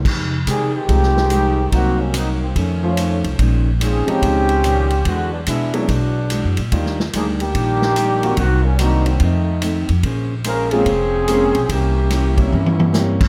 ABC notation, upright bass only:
X:1
M:4/4
L:1/8
Q:"Swing" 1/4=145
K:Fm
V:1 name="Upright bass" clef=bass
F,,2 C,2 C,,4 | C,,4 F,,3 C,, | B,,,3 z D,,4 | =E,,2 =B,,2 =B,,,2- (3B,,, ^F,, _B,, |
E,,2 =D,,2 B,,,4 | C,,4 F,,3 F,, | B,,,4 F,,,3 =B,,, | C,,4 G,,4 |]